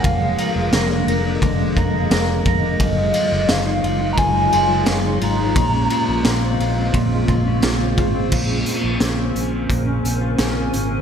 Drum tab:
CC |--------|--------|--------|x-------|
RD |xxxxxxxx|xxxxxxxx|xxxxxxxx|--------|
HH |--------|--------|--------|-xxxxxxx|
TB |--x---x-|--x---x-|--x---x-|--------|
SD |--o---o-|--o---o-|--o---o-|--o---o-|
BD |o---oo-o|o---o---|o---oo-o|o---o---|